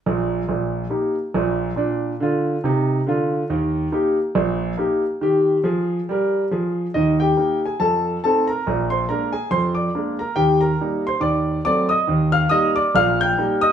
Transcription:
0.06 0.40 A#1 medium
0.06 0.40 A#2 medium
0.48 0.83 A#1 soft
0.48 0.83 A#2 soft
0.90 1.14 A#3 soft
0.90 1.14 D#4 soft
0.90 1.14 G4 soft
1.34 1.69 A#1 medium
1.34 1.69 A#2 medium
1.76 2.11 A#2 medium
1.76 2.12 D4 medium
2.20 2.55 D3 medium
2.20 2.56 F4 medium
2.64 2.98 C3 medium
2.64 2.99 D#4 medium
3.06 3.41 D3 medium
3.06 3.42 F4 medium
3.50 3.86 D#2 medium
3.50 3.86 D#3 medium
3.92 4.16 A#3 soft
3.92 4.16 D#4 soft
3.92 4.17 G4 medium
4.35 4.72 A#1 medium
4.35 4.72 A#2 medium
4.78 5.02 A#3 soft
4.78 5.03 D#4 soft
4.78 5.02 G4 soft
5.21 5.56 D#3 medium
5.21 5.57 G4 medium
5.64 5.98 F3 medium
5.64 5.99 G#4 medium
6.09 6.43 G3 medium
6.09 6.44 A#4 medium
6.51 6.85 F3 medium
6.51 6.86 G#4 medium
6.94 7.31 D#2 medium
6.94 7.31 D#3 medium
6.94 7.18 D#4 soft
6.94 7.15 D#5 medium
7.20 7.63 G4 soft
7.20 7.59 G5 medium
7.37 7.60 A#3 soft
7.37 7.62 D#4 soft
7.66 7.79 G#4 soft
7.66 7.77 G#5 medium
7.80 8.16 F2 soft
7.80 8.16 F3 soft
7.80 8.20 A4 soft
7.80 8.16 A5 medium
8.24 8.47 A3 soft
8.24 8.48 C4 soft
8.24 8.48 D#4 soft
8.24 8.47 A4 medium
8.24 8.44 A5 medium
8.48 8.88 A#4 medium
8.48 8.84 A#5 medium
8.67 9.03 A#1 medium
8.67 9.02 A#2 medium
8.90 9.08 C5 medium
8.90 9.05 C6 medium
9.09 9.32 G#3 soft
9.09 9.32 A#3 soft
9.09 9.33 D4 soft
9.09 9.32 A#4 medium
9.09 9.30 A#5 medium
9.33 9.50 G#4 medium
9.33 9.48 G#5 medium
9.51 9.87 F2 soft
9.51 9.88 F3 soft
9.51 9.75 C5 medium
9.51 9.72 C6 medium
9.75 10.16 D5 soft
9.75 10.12 D6 medium
9.95 10.18 G#3 soft
9.95 10.18 A#3 soft
9.95 10.18 D4 soft
10.19 10.36 A#4 medium
10.19 10.34 A#5 medium
10.36 10.73 D#2 medium
10.36 10.73 D#3 medium
10.36 10.60 G4 medium
10.36 10.57 G5 medium
10.61 11.05 A#4 medium
10.61 11.01 A#5 medium
10.80 11.04 G3 soft
10.80 11.04 A#3 soft
10.80 11.04 D#4 soft
11.07 11.22 C5 medium
11.07 11.19 C6 medium
11.20 11.58 D#2 soft
11.20 11.58 D#3 medium
11.20 11.62 D5 medium
11.20 11.58 D6 medium
11.65 11.89 F#3 soft
11.65 11.89 A3 soft
11.65 11.89 C4 soft
11.65 11.89 D5 medium
11.65 11.86 D6 medium
11.89 12.30 D#5 soft
11.89 12.26 D#6 medium
12.07 12.45 D#2 medium
12.07 12.44 D#3 medium
12.32 12.50 F5 medium
12.32 12.48 F6 medium
12.49 12.74 G3 soft
12.49 12.74 A#3 soft
12.49 12.74 D#4 soft
12.49 12.74 D#5 medium
12.49 12.71 D#6 medium
12.76 12.93 D5 medium
12.76 12.91 D6 medium
12.95 13.31 A#1 medium
12.95 13.31 A#2 medium
12.95 13.18 F5 medium
12.95 13.16 F6 loud
13.21 13.60 G5 medium
13.21 13.56 G6 medium
13.37 13.61 G3 soft
13.37 13.62 A#3 soft
13.37 13.61 D#4 soft
13.61 13.72 D#5 medium
13.61 13.72 D#6 medium

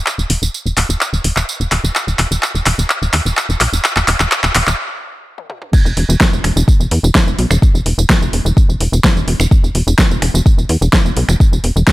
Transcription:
0.06 clap medium
0.06 tambourine medium
0.18 0.26 E1 medium
0.18 tambourine soft
0.30 0.38 E1 medium
0.30 open hi-hat loud
0.42 0.49 E1 medium
0.42 tambourine medium
0.54 tambourine medium
0.66 0.73 E1 medium
0.66 tambourine soft
0.77 0.85 E1 loud
0.77 clap medium
0.77 open hi-hat loud
0.89 0.97 E1 medium
0.89 tambourine medium
1.01 clap medium
1.01 tambourine medium
1.13 1.20 E1 medium
1.13 tambourine soft
1.24 1.32 E1 loud
1.24 open hi-hat loud
1.36 1.44 E1 medium
1.36 clap medium
1.36 tambourine medium
1.49 tambourine medium
1.60 1.68 E1 medium
1.60 tambourine soft
1.72 1.79 E1 loud
1.72 clap medium
1.72 open hi-hat loud
1.84 1.91 E1 medium
1.84 tambourine medium
1.95 clap medium
1.95 tambourine medium
2.07 2.15 E1 medium
2.07 tambourine soft
2.19 2.27 E1 loud
2.19 clap medium
2.19 open hi-hat loud
2.31 2.38 E1 medium
2.31 tambourine medium
2.43 clap medium
2.43 tambourine medium
2.55 2.62 E1 medium
2.55 tambourine soft
2.66 2.74 E1 loud
2.66 clap medium
2.66 open hi-hat loud
2.78 2.86 E1 medium
2.78 tambourine medium
2.90 clap medium
2.90 tambourine medium
3.02 3.09 E1 medium
3.02 tambourine soft
3.13 3.21 E2 loud
3.13 clap medium
3.13 open hi-hat loud
3.25 3.33 E1 medium
3.25 tambourine medium
3.37 clap medium
3.37 tambourine medium
3.49 3.56 E1 medium
3.49 tambourine soft
3.61 3.68 B1 loud
3.61 clap medium
3.61 open hi-hat loud
3.73 3.80 E1 medium
3.73 tambourine medium
3.84 clap medium
3.84 tambourine medium
3.96 4.04 E1 medium
3.96 clap medium
3.96 tambourine soft
4.08 4.16 E1 loud
4.08 clap medium
4.08 open hi-hat loud
4.20 4.27 E1 medium
4.20 clap medium
4.20 tambourine medium
4.32 clap loud
4.32 tambourine medium
4.44 4.51 E1 medium
4.44 clap medium
4.44 tambourine soft
4.55 4.63 E1 loud
4.55 clap loud
4.55 open hi-hat loud
4.67 4.75 E1 medium
4.67 clap medium
4.67 tambourine medium
5.38 high tom medium
5.50 mid tom medium
5.62 mid tom medium
5.73 kick loud
5.73 tambourine medium
5.73 crash loud
5.85 5.93 E1 medium
5.85 tambourine soft
5.97 6.05 E1 loud
5.97 open hi-hat loud
6.09 6.16 E1 loud
6.09 tambourine medium
6.21 kick loud
6.21 snare loud
6.21 tambourine medium
6.33 6.40 E1 medium
6.33 tambourine soft
6.44 6.52 E1 loud
6.44 finger snap medium
6.44 open hi-hat loud
6.56 6.64 E1 medium
6.56 tambourine medium
6.68 kick loud
6.68 tambourine medium
6.80 6.87 E1 medium
6.80 tambourine soft
6.91 6.99 E2 loud
6.91 open hi-hat loud
7.03 7.11 E1 medium
7.03 tambourine medium
7.15 kick loud
7.15 snare loud
7.15 tambourine medium
7.27 7.34 E1 medium
7.27 tambourine soft
7.39 7.46 B1 loud
7.39 open hi-hat loud
7.51 7.58 E1 medium
7.51 finger snap medium
7.51 tambourine medium
7.62 kick loud
7.62 tambourine medium
7.74 7.82 E1 medium
7.74 tambourine soft
7.86 7.94 E1 loud
7.86 open hi-hat loud
7.98 8.05 E1 medium
7.98 tambourine medium
8.10 kick loud
8.10 snare loud
8.10 tambourine medium
8.22 8.29 E1 medium
8.22 tambourine soft
8.33 8.41 E1 loud
8.33 open hi-hat loud
8.45 8.53 E1 loud
8.45 tambourine medium
8.57 kick loud
8.57 tambourine medium
8.69 8.76 E1 medium
8.69 tambourine soft
8.80 8.88 E1 loud
8.80 open hi-hat loud
8.92 9.00 E1 medium
8.92 tambourine medium
9.04 kick loud
9.04 snare loud
9.04 tambourine medium
9.16 9.23 E1 medium
9.16 tambourine soft
9.28 9.35 E1 loud
9.28 open hi-hat loud
9.40 9.47 E1 medium
9.40 finger snap medium
9.40 tambourine medium
9.51 kick loud
9.51 tambourine medium
9.63 9.71 E1 medium
9.63 tambourine soft
9.75 9.83 E1 loud
9.75 open hi-hat loud
9.87 9.94 E1 medium
9.87 tambourine medium
9.99 kick loud
9.99 snare loud
9.99 tambourine medium
10.11 10.18 E1 medium
10.11 tambourine soft
10.22 10.30 E1 loud
10.22 finger snap medium
10.22 open hi-hat loud
10.34 10.42 E1 medium
10.34 tambourine medium
10.46 kick loud
10.46 tambourine medium
10.58 10.65 E1 medium
10.58 tambourine soft
10.69 10.77 E2 loud
10.69 open hi-hat loud
10.81 10.89 E1 medium
10.81 tambourine medium
10.93 kick loud
10.93 snare loud
10.93 tambourine medium
11.05 11.12 E1 medium
11.05 tambourine soft
11.17 11.24 B1 loud
11.17 open hi-hat loud
11.29 11.36 E1 medium
11.29 finger snap medium
11.29 tambourine medium
11.40 kick loud
11.40 tambourine medium
11.52 11.60 E1 medium
11.52 tambourine soft
11.64 11.72 E1 loud
11.64 open hi-hat loud
11.76 11.83 E1 medium
11.76 tambourine medium
11.87 kick loud
11.87 snare loud
11.87 tambourine medium

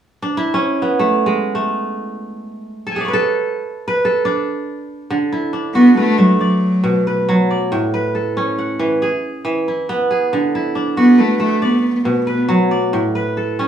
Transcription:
0.22 0.60 D4 medium
0.37 1.94 E4 medium
0.54 2.28 C#4 medium
0.82 2.68 B3 medium
0.99 1.32 A3 medium
1.26 3.60 G#3 medium
1.55 2.97 A3 medium
2.87 2.97 A4 medium
2.87 3.02 A5 soft
2.91 3.91 F#5 soft
2.91 3.19 G#5 soft
2.96 3.19 G#4 medium
2.96 4.01 E5 soft
3.01 4.11 D5 soft
3.05 3.87 B4 medium
3.05 4.20 C#5 soft
3.13 4.04 A4 medium
3.88 5.11 B4 medium
4.05 5.37 A4 medium
4.25 5.53 D4 medium
5.10 6.46 D3 medium
5.32 6.89 E4 medium
5.53 7.21 D4 medium
5.74 5.95 B3 medium
5.74 7.21 F#4 medium
5.97 6.22 A3 medium
5.97 7.07 B4 medium
6.18 6.41 F#3 medium
6.18 8.18 A3 medium
6.41 7.24 F#3 medium
6.41 7.50 D5 medium
6.84 7.76 B2 medium
7.07 7.93 B4 medium
7.29 7.76 F#3 medium
7.51 8.43 D5 medium
7.72 9.07 A2 medium
7.94 9.17 B4 medium
8.15 9.08 A4 medium
8.37 10.11 C#4 medium
8.58 9.55 F#5 medium
8.79 9.07 E3 medium
9.02 10.10 G#4 medium
9.45 10.37 E3 medium
9.68 10.55 E4 medium
9.89 11.76 B3 medium
10.11 11.46 G#4 medium
10.33 11.68 D3 medium
10.55 12.12 E4 medium
10.75 12.43 D4 medium
10.97 11.21 B3 medium
10.97 12.43 F#4 medium
11.18 11.41 A3 medium
11.18 12.27 B4 medium
11.40 13.39 A3 medium
11.40 11.62 A3 medium
11.62 11.70 B3 medium
11.62 12.71 D5 medium
11.71 11.78 B3 medium
11.80 11.86 B3 medium
11.88 11.93 B3 medium
11.93 12.00 B3 medium
12.02 12.98 B2 medium
12.02 12.08 B3 soft
12.11 12.16 B3 medium
12.16 12.23 B3 soft
12.23 12.30 B3 medium
12.23 13.15 B4 medium
12.32 12.38 B3 medium
12.49 12.98 F#3 medium
12.71 13.65 D5 medium
12.93 13.68 A2 medium
13.15 13.68 B4 medium
13.37 13.68 A4 medium
13.59 13.68 C#4 medium

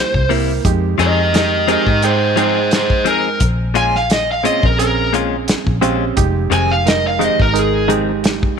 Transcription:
0.00 0.23 A#3 medium
0.00 0.24 E4 medium
0.00 0.23 G4 medium
0.00 0.30 C5 medium
0.14 0.58 C2 medium
0.14 kick medium
0.29 0.51 C3 medium
0.29 0.51 G3 medium
0.29 0.62 A#3 medium
0.29 0.51 A#3 medium
0.29 0.62 E4 medium
0.29 0.52 E4 medium
0.29 0.63 A#4 medium
0.29 open hi-hat medium
0.65 0.95 F2 loud
0.65 1.29 G#3 medium
0.65 1.30 D#4 medium
0.65 1.30 G4 medium
0.65 kick loud
0.65 closed hi-hat medium
0.98 1.76 F2 medium
0.98 1.20 F3 medium
0.98 1.21 C4 medium
0.98 1.21 D#4 medium
0.98 1.21 G#4 medium
0.98 1.34 A#4 medium
0.98 1.33 D#5 medium
0.98 closed hi-hat medium
1.33 1.66 G#3 medium
1.33 1.66 D#4 medium
1.33 1.66 G4 medium
1.33 1.66 A#4 medium
1.33 1.68 D#5 medium
1.33 snare loud
1.33 closed hi-hat medium
1.68 1.89 F3 medium
1.68 2.01 G#3 medium
1.68 1.90 C4 medium
1.68 1.90 D#4 medium
1.68 2.01 D#4 medium
1.68 2.01 G4 medium
1.68 1.90 G#4 medium
1.68 2.01 A#4 medium
1.68 2.03 D#5 medium
1.68 closed hi-hat medium
1.87 2.90 G#2 medium
1.87 kick medium
2.02 2.35 G#3 medium
2.02 2.36 D#4 medium
2.02 2.36 G#4 medium
2.02 2.37 C5 medium
2.02 2.36 G5 medium
2.02 closed hi-hat medium
2.36 2.58 F3 medium
2.36 3.40 G#3 medium
2.36 2.59 C4 medium
2.36 3.41 D#4 medium
2.36 2.59 D#4 medium
2.36 2.59 G#4 medium
2.36 2.70 G#4 medium
2.36 2.71 C5 medium
2.36 3.41 G5 medium
2.36 closed hi-hat medium
2.71 3.04 G#4 medium
2.71 3.06 C5 medium
2.71 snare loud
2.71 closed hi-hat medium
2.90 3.34 F2 medium
2.90 kick medium
3.05 3.27 F3 medium
3.05 3.27 C4 medium
3.05 3.28 D#4 medium
3.05 3.28 G#4 medium
3.05 3.41 A#4 medium
3.05 closed hi-hat medium
3.40 4.48 A#1 loud
3.40 kick medium
3.40 closed hi-hat medium
3.74 3.96 A#2 medium
3.74 3.97 G#3 medium
3.74 3.97 C#4 medium
3.74 3.97 F4 medium
3.74 3.96 G#5 medium
3.74 closed hi-hat medium
3.95 4.13 F5 medium
3.95 snare soft
4.10 4.29 D#5 medium
4.10 snare loud
4.10 closed hi-hat medium
4.32 4.46 F5 medium
4.43 4.66 A#2 medium
4.43 4.66 G#3 medium
4.43 4.76 C4 medium
4.43 4.76 C#4 medium
4.43 4.66 C#4 medium
4.43 4.67 F4 medium
4.43 4.77 G#4 medium
4.43 4.63 D#5 medium
4.43 closed hi-hat medium
4.63 5.54 A#1 medium
4.63 4.79 A#4 medium
4.63 kick medium
4.79 5.76 C4 medium
4.79 5.76 C#4 medium
4.79 5.76 G#4 medium
4.79 5.13 A#4 medium
4.79 closed hi-hat medium
5.13 5.35 A#2 medium
5.13 5.35 G#3 medium
5.13 5.36 C#4 medium
5.13 5.36 F4 medium
5.13 closed hi-hat medium
5.48 snare loud
5.48 closed hi-hat medium
5.66 6.11 A#1 medium
5.66 kick medium
5.81 6.04 A#2 medium
5.81 6.04 G#3 medium
5.81 6.14 C4 medium
5.81 6.14 C#4 medium
5.81 6.04 C#4 medium
5.81 6.05 F4 medium
5.81 6.14 G4 medium
5.81 closed hi-hat medium
6.16 6.47 F1 loud
6.16 6.82 G#3 medium
6.16 6.82 D#4 medium
6.16 6.82 G4 medium
6.16 kick loud
6.16 closed hi-hat medium
6.50 7.28 F1 medium
6.50 6.72 F2 medium
6.50 6.73 D#3 medium
6.50 6.73 G#3 medium
6.50 6.73 C4 medium
6.50 6.70 G#5 medium
6.50 closed hi-hat medium
6.71 6.88 F5 medium
6.86 7.17 G#3 medium
6.86 7.18 D#4 medium
6.86 7.19 A#4 medium
6.86 7.05 D#5 medium
6.86 snare loud
6.86 closed hi-hat medium
7.07 7.24 F5 medium
7.19 7.41 F2 medium
7.19 7.42 D#3 medium
7.19 7.52 G#3 medium
7.19 7.42 G#3 medium
7.19 7.42 C4 medium
7.19 7.52 D#4 medium
7.19 7.52 G4 medium
7.19 closed hi-hat medium
7.24 7.40 D#5 medium
7.40 8.43 G#1 medium
7.40 7.59 A#4 medium
7.40 kick medium
7.54 7.87 G#3 medium
7.54 7.87 D#4 medium
7.54 7.87 A#4 medium
7.54 closed hi-hat medium
7.59 7.90 G#4 medium
7.88 8.10 F2 medium
7.88 8.11 D#3 medium
7.88 8.59 G#3 medium
7.88 8.11 G#3 medium
7.88 8.11 C4 medium
7.88 8.59 D#4 medium
7.88 8.59 G4 medium
7.88 closed hi-hat medium
8.24 snare loud
8.24 closed hi-hat medium
8.43 8.59 F1 medium
8.43 kick medium

